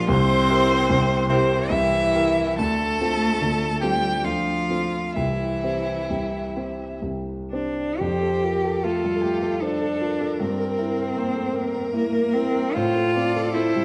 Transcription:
0.00 0.12 A#1 medium
0.00 0.13 A#2 medium
0.00 0.11 F3 loud
0.00 0.12 D4 medium
0.00 0.12 G4 medium
0.00 0.13 A#4 medium
0.08 0.48 C2 medium
0.08 0.48 C3 medium
0.08 1.29 C4 loud
0.08 1.29 C5 loud
0.08 1.31 C6 loud
0.50 0.86 E4 medium
0.50 0.86 G4 medium
0.50 0.86 A#4 medium
0.90 1.29 C2 medium
0.90 1.29 C3 medium
1.29 1.72 C3 medium
1.29 1.71 C4 medium
1.29 1.67 E4 medium
1.29 1.67 G4 medium
1.29 1.67 A#4 medium
1.29 1.72 C5 loud
1.69 2.13 C2 medium
1.69 2.13 C3 medium
1.69 2.58 E3 medium
1.69 2.58 E4 loud
1.69 2.58 E5 loud
2.14 2.55 E4 medium
2.14 2.55 G4 medium
2.14 2.55 A#4 medium
2.58 2.99 D2 medium
2.58 2.99 D3 medium
2.58 3.84 A3 loud
2.58 3.83 A4 loud
2.58 3.79 A5 loud
3.01 3.37 C4 medium
3.01 3.37 F4 medium
3.01 3.38 A4 medium
3.41 3.81 D2 medium
3.41 3.81 D3 medium
3.82 4.26 G3 medium
3.82 4.21 C4 medium
3.82 4.21 F4 medium
3.82 4.25 G4 medium
3.82 4.21 A4 medium
3.82 4.26 G5 loud
4.24 4.68 D2 medium
4.24 4.68 D3 medium
4.24 5.17 F3 medium
4.24 5.17 F4 medium
4.24 5.15 F5 loud
4.70 5.13 C4 soft
4.70 5.13 F4 soft
4.70 5.13 A4 soft
5.16 5.62 C2 medium
5.16 5.62 C3 medium
5.16 7.02 E3 medium
5.16 7.02 E4 medium
5.16 6.98 E5 medium
5.63 6.05 C4 soft
5.63 6.06 G4 soft
5.63 6.06 C5 soft
6.10 6.54 C2 medium
6.10 6.55 C3 medium
6.56 6.98 C4 soft
6.56 6.98 G4 soft
6.56 6.99 C5 soft
7.02 7.50 C2 soft
7.02 7.50 C3 soft
7.51 7.96 C4 soft
7.51 8.00 D4 medium
7.51 7.96 G4 soft
7.51 7.96 C5 soft
7.99 10.35 F2 medium
7.99 8.85 G4 medium
7.99 10.35 A4 medium
7.99 8.45 C5 medium
8.22 8.55 A4 medium
8.43 8.76 F4 soft
8.43 8.86 A#4 medium
8.64 8.96 A4 soft
8.83 9.15 A3 medium
8.83 9.63 F4 medium
8.83 9.24 A4 medium
9.04 9.23 G3 soft
9.23 9.54 A3 medium
9.23 9.61 G4 medium
9.42 9.73 A4 medium
9.62 10.42 D4 loud
9.62 10.02 A4 medium
9.62 9.93 C5 medium
9.81 10.12 A4 medium
10.01 10.32 F4 medium
10.01 11.19 A#4 medium
10.21 10.40 A4 medium
10.40 12.71 G2 medium
10.40 11.92 C4 medium
10.40 12.71 A#4 medium
10.59 10.90 A#4 medium
10.78 11.08 E4 medium
10.98 11.28 A#4 medium
11.16 11.46 A#3 medium
11.16 11.57 C5 medium
11.36 11.54 A3 medium
11.54 11.84 A#3 medium
11.54 12.77 A#4 loud
11.73 12.04 A#4 medium
11.93 12.35 A#3 medium
11.93 12.25 E4 medium
12.12 12.46 A#4 medium
12.34 12.75 C4 loud
12.34 12.67 E4 medium
12.54 12.75 A#4 medium
12.74 13.85 A2 medium
12.74 13.53 F4 loud
12.74 13.85 A4 medium
12.74 13.14 C5 medium
12.96 13.27 A4 medium
13.15 13.46 C4 medium
13.15 13.56 D5 medium
13.36 13.67 A4 medium
13.53 13.85 A3 medium
13.53 13.85 E4 loud
13.53 13.85 C5 medium
13.75 13.85 G3 medium

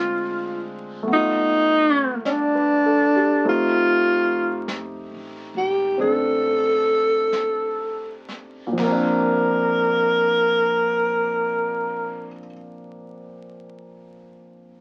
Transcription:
0.00 1.04 D2 medium
0.00 1.07 G#3 medium
0.00 1.08 C4 soft
0.00 1.09 D4 soft
0.00 0.68 F4 loud
0.00 1.09 F4 medium
1.03 3.43 A3 soft
1.03 3.45 B3 soft
1.08 3.41 G1 medium
1.08 brush sweep soft
1.13 2.18 D#4 medium
1.13 3.48 F4 soft
2.25 2.31 C#4 soft
2.25 3.47 D4 medium
2.25 2.81 D5 soft
2.25 brush sweep soft
2.25 snare soft
2.25 hi-hat pedal soft
2.55 3.06 B4 soft
2.86 3.23 A4 soft
3.16 3.45 G4 soft
3.45 5.07 F1 medium
3.45 8.78 A3 soft
3.45 5.96 C4 soft
3.45 8.78 D#4 soft
3.45 8.78 G4 soft
3.45 brush sweep soft
3.49 4.67 F4 medium
4.68 brush sweep soft
4.68 snare soft
4.68 hi-hat pedal medium
5.11 5.51 A1 soft
5.55 5.95 E1 medium
5.55 5.96 G4 medium
5.97 8.75 A1 medium
5.97 8.78 C4 soft
5.97 8.80 D4 soft
5.97 brush sweep soft
6.01 8.27 A4 medium
7.33 brush sweep soft
7.33 snare soft
7.33 hi-hat pedal soft
8.29 snare soft
8.67 12.26 A#2 soft
8.73 12.32 F3 soft
8.78 12.33 A#1 medium
8.78 12.39 A#3 soft
8.78 kick medium
8.78 snare medium
8.78 crash medium
8.83 12.45 C4 soft
8.83 12.38 A#4 medium
8.92 12.52 D4 medium

